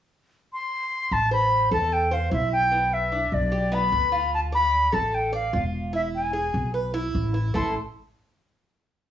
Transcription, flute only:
0.53 1.14 C6 medium
1.13 1.32 A5 loud
1.33 1.69 B5 loud
1.73 1.94 A5 medium
1.93 2.15 G5 medium
2.13 2.32 F5 medium
2.33 2.51 E5 medium
2.53 2.95 G5 loud
2.94 3.36 E5 medium
3.34 3.76 D5 medium
3.74 4.33 B5 loud
4.34 4.40 A5 loud
4.55 4.96 B5 loud
4.94 5.16 A5 medium
5.14 5.34 G5 medium
5.35 5.65 F5 medium
5.95 6.01 E5 loud
6.15 6.71 G#5 medium
7.56 7.74 C6 medium

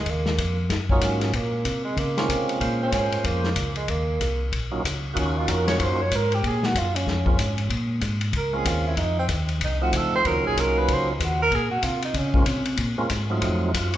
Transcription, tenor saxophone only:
0.00 0.12 G#3 medium
0.10 0.60 A#3 medium
0.91 1.37 C#4 medium
1.36 1.84 A#3 medium
1.85 2.01 G#3 medium
1.99 2.50 A#3 medium
2.83 3.27 C#4 loud
3.26 3.76 A#3 medium
3.77 3.91 G#3 medium
3.90 4.41 A#3 medium
5.19 5.39 C#4 medium
5.37 5.51 F4 medium
5.49 5.67 A#4 medium
5.68 5.84 C#5 loud
5.83 6.03 C5 medium
6.02 6.17 C#5 loud
6.16 6.36 A#4 medium
6.35 6.49 G4 medium
6.48 6.67 G#4 medium
6.65 6.80 F#4 medium
6.79 6.97 F4 medium
6.95 7.71 C#4 medium
8.37 8.58 A#4 medium
8.57 8.70 G#4 medium
8.68 8.88 F4 medium
8.87 9.00 E4 loud
8.98 9.18 D#4 medium
9.19 9.26 C4 medium
9.64 9.81 D#4 medium
9.83 9.98 F#4 medium
9.97 10.14 A4 medium
10.16 10.29 C5 loud
10.27 10.46 A#4 medium
10.47 10.61 G#4 loud
10.60 10.80 A#4 medium
10.79 10.94 B4 loud
10.93 11.10 C5 loud
11.11 11.26 D#4 soft
11.24 11.42 F#4 medium
11.42 11.56 A#4 loud
11.55 11.70 G#4 medium
11.71 11.85 F#4 medium
11.84 12.03 F4 medium
12.05 12.19 D#4 medium
12.17 12.68 C#4 medium

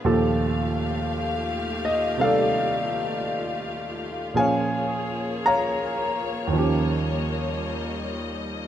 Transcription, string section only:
0.00 8.67 F4 medium
0.04 4.32 A3 medium
0.04 4.31 G4 medium
0.04 4.31 F5 medium
4.33 8.67 A#3 medium
4.33 6.49 G#4 medium
4.33 8.67 C#5 medium
6.52 8.67 G3 medium
6.52 8.67 D#5 medium

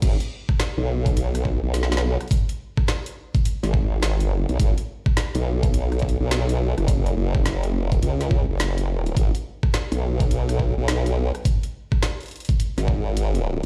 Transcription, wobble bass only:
0.02 0.17 G#1 loud
0.78 1.60 B1 loud
1.63 2.18 B1 loud
3.63 4.22 G#1 medium
4.22 4.46 G1 medium
4.49 4.58 B1 loud
4.60 4.75 G#1 loud
5.35 6.18 B1 loud
6.20 6.75 B1 medium
6.78 7.15 F#1 loud
7.17 7.76 F#1 loud
7.76 8.01 F1 loud
8.02 8.46 C#2 loud
8.49 9.15 F#1 medium
9.17 9.32 G#1 loud
9.92 10.75 B1 loud
10.78 11.32 B1 medium
12.78 13.60 G#1 loud

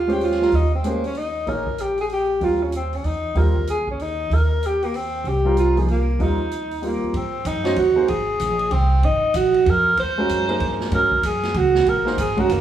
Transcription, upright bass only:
0.00 0.48 D#2 medium
0.52 1.43 D#2 medium
1.47 2.37 A#1 medium
2.41 3.00 D#2 medium
3.04 3.33 E2 medium
3.35 4.26 D#2 medium
4.30 5.21 D#2 medium
5.24 6.15 C2 medium
6.19 6.98 D#2 medium
7.02 muted upright bass stroke soft
7.13 7.44 G#2 medium
7.45 7.76 F#2 medium
7.76 7.95 D#2 medium
7.97 muted upright bass stroke soft
8.09 8.39 G#1 medium
8.40 8.70 A#1 medium
8.71 9.02 C2 medium
9.03 9.21 G#1 medium
9.23 muted upright bass stroke soft
9.34 9.65 A#1 medium
9.66 9.96 F2 medium
9.98 10.28 D#2 medium
10.29 10.60 F#2 medium
10.60 10.91 G2 medium
10.91 11.21 G#2 medium
11.22 11.53 F#2 medium
11.54 11.84 C#2 medium
11.85 12.16 A#1 medium
12.17 12.48 G#1 medium
12.49 12.61 F#1 medium

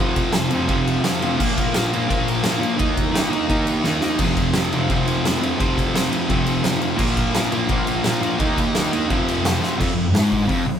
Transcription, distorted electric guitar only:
0.00 0.32 F2 loud
0.00 0.32 C3 loud
0.00 0.34 F3 loud
0.33 0.50 F2 medium
0.33 0.51 C3 medium
0.33 0.51 F3 loud
0.51 0.67 F2 medium
0.51 0.68 C3 medium
0.51 0.68 F3 medium
0.69 1.02 F2 loud
0.69 1.03 C3 loud
0.69 1.04 F3 loud
1.04 1.21 F2 medium
1.04 1.22 C3 medium
1.04 1.23 F3 loud
1.22 1.38 F2 medium
1.22 1.39 C3 medium
1.22 1.39 F3 medium
1.40 1.72 A#2 loud
1.40 1.73 F3 loud
1.40 1.75 A#3 loud
1.74 1.92 A#2 medium
1.74 1.93 F3 loud
1.74 1.95 A#3 medium
1.93 2.08 A#2 medium
1.93 2.08 F3 loud
1.93 2.08 A#3 loud
2.09 2.43 A#2 loud
2.09 2.43 F3 loud
2.09 2.44 A#3 loud
2.44 2.58 A#2 medium
2.44 2.59 F3 medium
2.44 2.60 A#3 loud
2.59 2.77 A#2 medium
2.59 2.78 F3 medium
2.59 2.77 A#3 medium
2.77 3.11 D#3 loud
2.77 3.11 A#3 loud
2.77 3.12 D#4 loud
3.12 3.29 D#3 medium
3.12 3.29 A#3 loud
3.12 3.30 D#4 loud
3.30 3.47 D#3 medium
3.30 3.47 A#3 medium
3.30 3.47 D#4 loud
3.48 3.83 D#3 medium
3.48 3.83 A#3 loud
3.48 3.84 D#4 loud
3.84 4.00 D#3 medium
3.84 4.01 A#3 medium
3.84 4.02 D#4 medium
4.02 4.18 D#3 medium
4.02 4.19 A#3 medium
4.02 4.19 D#4 medium
4.20 4.55 F2 loud
4.20 4.55 C3 loud
4.20 4.56 F3 loud
4.55 4.73 F2 medium
4.55 4.72 C3 medium
4.55 4.74 F3 medium
4.73 4.89 F2 medium
4.73 4.88 C3 loud
4.73 4.90 F3 loud
4.90 5.23 F2 loud
4.90 5.24 C3 loud
4.90 5.25 F3 loud
5.24 5.39 F2 medium
5.24 5.40 C3 medium
5.24 5.41 F3 medium
5.40 5.57 F2 medium
5.40 5.58 C3 medium
5.40 5.59 F3 medium
5.58 5.93 F2 medium
5.58 5.93 C3 loud
5.58 5.95 F3 loud
5.94 6.09 F2 medium
5.94 6.10 C3 medium
5.94 6.11 F3 loud
6.10 6.27 F2 medium
6.10 6.29 C3 medium
6.10 6.29 F3 medium
6.28 6.63 F2 medium
6.28 6.63 C3 loud
6.28 6.64 F3 loud
6.64 6.79 F2 medium
6.64 6.80 C3 loud
6.64 6.81 F3 loud
6.80 6.97 F2 medium
6.80 6.96 C3 medium
6.80 6.96 F3 loud
6.96 7.33 A#2 loud
6.96 7.34 F3 loud
6.96 7.35 A#3 loud
7.34 7.51 A#2 medium
7.34 7.52 F3 medium
7.34 7.52 A#3 loud
7.52 7.68 A#2 medium
7.52 7.70 F3 medium
7.52 7.70 A#3 loud
7.70 8.03 A#2 loud
7.70 8.04 F3 loud
7.70 8.05 A#3 loud
8.04 8.19 A#2 medium
8.04 8.20 F3 medium
8.04 8.20 A#3 medium
8.20 8.37 A#2 medium
8.20 8.38 F3 medium
8.20 8.38 A#3 medium
8.38 8.74 D#3 loud
8.38 8.74 A#3 loud
8.38 8.74 D#4 loud
8.75 8.90 D#3 medium
8.75 8.91 A#3 medium
8.75 8.92 D#4 medium
8.91 9.08 D#3 medium
8.91 9.08 A#3 medium
8.91 9.09 D#4 medium
9.09 9.42 F2 loud
9.09 9.43 C3 loud
9.09 9.43 F3 loud
9.44 9.60 F2 medium
9.44 9.61 C3 medium
9.44 9.61 F3 loud
9.61 9.77 F2 medium
9.61 9.78 C3 medium
9.61 9.78 F3 medium
9.78 9.94 F2 loud
9.96 10.10 F2 medium
10.14 10.47 G#2 loud
10.47 10.65 F2 loud
10.68 muted distorted electric guitar stroke medium

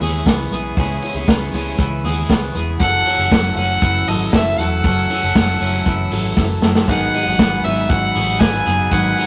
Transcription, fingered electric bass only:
0.00 0.21 D#2 medium
0.26 0.47 C#2 loud
0.51 0.72 B1 medium
0.77 0.98 C#2 loud
1.14 1.25 C#2 medium
1.28 1.49 C#2 medium
1.53 1.74 C#2 loud
1.78 2.00 C#2 loud
2.03 2.24 D#2 medium
2.29 2.50 C#2 loud
2.55 2.76 E1 medium
2.80 3.01 F#1 medium
3.17 3.28 F#1 medium
3.32 3.52 F#1 medium
3.55 3.77 F#1 loud
3.82 4.03 F#1 loud
4.07 4.28 G#1 medium
4.33 4.54 F#1 medium
4.59 4.80 E1 medium
4.85 5.05 F#1 loud
5.23 5.33 F#1 loud
5.35 5.56 F#1 loud
5.60 5.81 F#1 loud
5.86 6.07 F#1 loud
6.12 6.32 G#1 medium
6.37 6.58 F#1 loud
6.63 6.84 F#1 medium
6.88 7.09 G#1 loud
7.26 7.37 G#1 medium
7.39 7.60 G#1 medium
7.65 7.86 G#1 medium
7.90 8.11 G#1 loud
8.16 8.36 A1 medium
8.41 8.62 G#1 medium
8.66 8.87 F#1 medium
8.92 9.13 G#1 loud

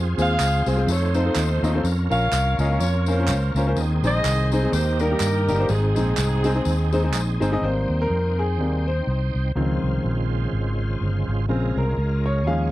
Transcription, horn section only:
0.18 0.84 G#4 medium
0.18 0.84 C5 medium
0.18 0.64 F5 loud
0.69 0.88 F5 loud
0.89 1.14 A4 medium
0.89 1.15 C#5 medium
1.15 1.80 D#4 medium
1.15 1.80 A4 medium
1.15 1.63 C5 loud
1.63 1.84 C#5 medium
2.10 2.79 A#4 medium
2.10 2.77 C#5 medium
2.10 2.55 F5 loud
2.58 2.78 F5 loud
2.79 3.05 F4 medium
2.79 3.73 A#4 medium
2.79 3.06 C#5 loud
3.05 3.72 F4 medium
3.05 3.54 C5 loud
3.55 3.75 C#5 medium
4.04 4.69 G#4 medium
4.04 4.69 C5 loud
4.04 4.49 D#5 loud
4.52 4.72 D#5 loud
4.72 4.97 D#4 medium
4.72 4.97 G4 medium
4.72 5.00 C5 loud
4.99 5.65 D#4 medium
4.99 5.65 G4 medium
4.99 5.69 A#4 loud
5.69 7.37 C4 medium
5.69 7.37 D#4 medium
5.69 7.41 G#4 medium

